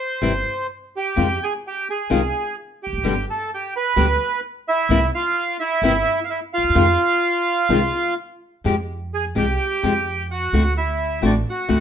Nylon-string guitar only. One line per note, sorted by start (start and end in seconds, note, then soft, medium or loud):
0.22 0.31 C3 medium
0.22 0.31 E3 medium
0.22 0.31 G3 medium
0.22 0.31 C4 medium
0.22 0.31 E4 medium
1.16 1.26 C3 medium
1.16 1.26 D#3 medium
1.16 1.26 G#3 medium
1.16 1.26 C4 medium
1.16 1.26 F4 medium
2.10 2.20 C3 medium
2.10 2.20 D#3 medium
2.10 2.20 G#3 medium
2.10 2.20 C4 medium
2.10 2.20 F4 medium
3.04 3.13 B2 medium
3.04 3.14 D3 medium
3.04 3.14 G3 medium
3.04 3.14 B3 medium
3.04 3.14 G4 medium
3.96 4.05 B2 medium
3.96 4.06 D3 medium
3.96 4.05 G3 medium
3.96 4.06 B3 medium
3.96 4.06 G4 loud
4.90 4.98 C3 medium
4.90 4.99 E3 medium
4.90 4.99 A#3 medium
4.90 4.99 C4 medium
4.90 4.99 E4 loud
5.83 5.91 C3 medium
5.83 5.92 E3 medium
5.83 5.92 A#3 medium
5.83 5.92 C4 loud
5.83 5.92 E4 loud
6.75 6.84 C3 medium
6.75 6.84 D#3 medium
6.75 6.85 G#3 medium
6.75 6.85 C4 medium
6.75 6.85 F4 medium
7.70 7.79 C3 medium
7.70 7.79 D#3 medium
7.70 7.79 G#3 medium
7.70 7.79 C4 medium
7.70 7.79 F4 medium
8.64 8.74 C3 medium
8.64 8.74 F3 medium
8.64 8.74 G#3 medium
8.64 8.74 C4 medium
8.64 8.74 G4 medium
9.35 9.45 C3 medium
9.35 9.45 F3 medium
9.35 9.45 G#3 medium
9.35 9.45 C4 medium
9.35 9.45 G4 medium
9.83 9.92 C3 medium
9.83 9.92 F3 medium
9.83 9.92 G#3 medium
9.83 9.92 C4 medium
9.83 9.93 G4 medium
10.53 10.62 D3 medium
10.53 10.62 A3 medium
10.53 10.63 C4 medium
10.53 10.63 F#4 medium
11.22 11.31 D3 medium
11.22 11.31 A3 medium
11.22 11.31 C4 medium
11.22 11.32 F#4 medium
11.68 11.78 D3 medium
11.68 11.78 A3 medium
11.68 11.78 C4 medium
11.68 11.78 F#4 medium